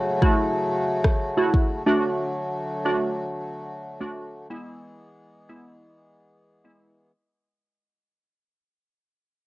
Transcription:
0.00 1.83 C#3 medium
0.00 1.83 F#3 medium
0.00 1.83 A3 medium
0.00 4.47 F#4 medium
0.00 downlifter medium
0.22 0.38 A3 medium
0.22 0.38 E4 medium
0.22 0.38 F#4 medium
0.22 kick medium
1.04 kick medium
1.04 cross-stick medium
1.37 1.53 A3 medium
1.37 1.53 E4 medium
1.37 1.54 F#4 medium
1.54 kick medium
1.86 4.48 D3 medium
1.86 4.48 F#3 medium
1.86 2.47 A3 medium
1.86 4.48 A3 medium
1.86 2.47 D4 medium
1.86 2.48 F#4 loud
2.85 3.02 A3 medium
2.85 3.02 D4 medium
2.85 3.02 F#4 medium
4.01 4.17 A3 medium
4.01 4.17 D4 medium
4.01 4.17 F#4 medium
4.50 7.12 E3 medium
4.50 5.11 G#3 medium
4.50 7.12 G#3 medium
4.50 5.11 B3 medium
4.50 7.12 B3 medium
4.50 5.11 E4 medium
4.50 7.12 G#4 medium
5.49 5.66 G#3 medium
5.49 5.66 B3 medium
5.49 5.66 E4 medium
6.64 6.81 G#3 medium
6.64 6.81 B3 medium
6.64 6.81 E4 medium

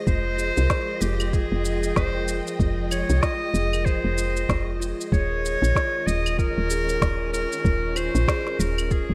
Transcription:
0.00 9.14 G#3 medium
0.00 9.14 F4 medium
0.00 9.14 D#5 medium
0.06 0.52 F1 loud
0.06 5.13 F3 medium
0.06 0.37 F4 loud
0.06 1.03 C5 loud
0.06 kick loud
0.06 shaker soft
0.38 0.56 G#4 medium
0.38 shaker medium
0.57 0.68 C2 medium
0.57 1.01 A#4 medium
0.57 shaker soft
0.70 kick loud
0.70 snare medium
0.70 shaker soft
0.89 5.13 G5 medium
1.01 1.46 F1 medium
1.01 1.19 F4 medium
1.01 1.35 G4 medium
1.01 shaker medium
1.20 claves medium
1.20 shaker soft
1.33 1.51 F4 medium
1.33 1.97 G#4 loud
1.33 kick loud
1.33 shaker soft
1.52 1.93 F1 medium
1.65 1.96 F4 medium
1.65 shaker medium
1.84 shaker soft
1.96 2.41 F1 medium
1.96 2.14 G#4 loud
1.96 2.44 C5 loud
1.96 kick loud
1.96 snare medium
1.96 shaker soft
2.15 2.59 A#4 medium
2.28 shaker medium
2.47 shaker soft
2.60 3.04 F1 loud
2.60 2.78 F4 medium
2.60 kick loud
2.60 shaker soft
2.91 3.09 F4 medium
2.91 3.24 C#5 loud
2.91 claves medium
2.91 shaker medium
3.10 3.20 C2 medium
3.10 shaker soft
3.22 3.53 F4 loud
3.22 3.87 D#5 loud
3.22 kick loud
3.22 snare medium
3.22 shaker soft
3.54 3.99 F1 loud
3.54 3.72 G#4 loud
3.54 shaker medium
3.73 4.17 A#4 medium
3.73 claves medium
3.73 shaker soft
3.85 4.80 C5 loud
3.85 kick loud
3.85 shaker soft
4.04 4.45 F1 medium
4.18 4.35 F4 medium
4.18 shaker medium
4.37 shaker soft
4.49 4.94 F1 medium
4.49 4.67 F4 medium
4.49 kick loud
4.49 snare medium
4.49 shaker soft
4.80 5.11 F4 loud
4.80 shaker medium
5.01 shaker soft
5.12 5.57 D#1 loud
5.12 9.14 D#3 medium
5.12 5.30 G#4 loud
5.12 6.08 C#5 loud
5.12 kick loud
5.12 shaker soft
5.31 5.74 A#4 medium
5.46 shaker medium
5.62 5.73 A#1 medium
5.62 shaker soft
5.75 9.14 C#4 medium
5.75 5.93 F4 medium
5.75 kick loud
5.75 snare medium
5.75 shaker soft
6.07 6.52 D#1 medium
6.07 6.25 F4 medium
6.07 6.38 D#5 loud
6.07 shaker medium
6.26 claves medium
6.26 shaker soft
6.38 6.69 F4 loud
6.38 7.29 A#4 loud
6.38 kick loud
6.38 shaker soft
6.58 6.98 D#1 medium
6.70 6.88 G#4 medium
6.70 shaker medium
6.89 7.32 A#4 medium
6.89 shaker soft
7.02 7.46 D#1 medium
7.02 kick medium
7.02 snare loud
7.02 shaker soft
7.33 7.51 F4 medium
7.33 7.98 A#4 loud
7.33 shaker medium
7.52 shaker soft
7.64 8.09 D#1 medium
7.64 7.83 F4 medium
7.64 kick loud
7.64 shaker soft
7.96 8.27 F4 loud
7.96 8.61 C5 loud
7.96 claves medium
7.96 shaker medium
8.15 8.26 A#1 medium
8.15 shaker soft
8.28 8.46 G#4 loud
8.28 kick loud
8.28 snare loud
8.28 shaker soft
8.46 8.90 A#4 medium
8.46 snare soft
8.59 9.04 D#1 medium
8.59 8.93 A#4 medium
8.59 shaker medium
8.78 claves medium
8.78 shaker soft
8.90 9.09 F4 medium
8.90 9.14 G#4 medium
8.90 kick loud
8.90 shaker soft
9.09 9.14 D#1 medium

